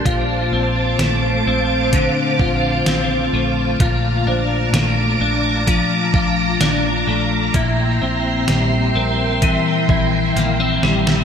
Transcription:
Already playing: G3 D4 A4 A5
0.05 A#1 A#2 F4 C5 F5 D6, kick, closed hi-hat
0.52 A#1 C4
0.99 A#1 A3, snare, closed hi-hat
1.46 A#1 C4
1.93 D3, kick, closed hi-hat
2.39 A#1 F4, kick
2.86 A#1 C4, snare, closed hi-hat
3.33 A#1 A3
3.80 A#1 A#2 F4 A5 A#5 D6, kick, closed hi-hat
4.27 A#1 D4 C5
4.73 A#1 A3, snare, closed hi-hat
5.20 A#1 D4
5.67 F3, kick, closed hi-hat
6.14 A#1 F4, kick
6.61 A#1 D4, snare, closed hi-hat
7.07 A#1 A3
7.54 A#1 A#2 E4 E5 G5 C6, kick, closed hi-hat
8.02 A#1 C4
8.48 A#1 G3, snare, closed hi-hat
8.95 A#1 C4 A#4
9.42 E3, kick, closed hi-hat
9.89 A#1 E4, kick
10.36 A#1 A#3, snare, closed hi-hat
10.60 C4
10.83 A#1 G3, snare
11.07 snare

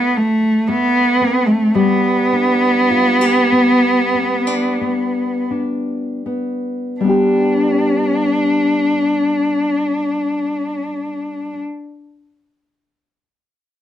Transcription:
Already playing: A3 B3 F4
0.17 A3
0.67 A3 B3
1.21 C4
1.47 A3
1.75 G3 B3
2.33 D4
2.91 F4
3.21 G4
3.52 B3
4.14 C4
4.47 D4
4.81 B3
5.51 D4
6.26 B3
7.01 G3 B3 D4
7.06 D4 G4

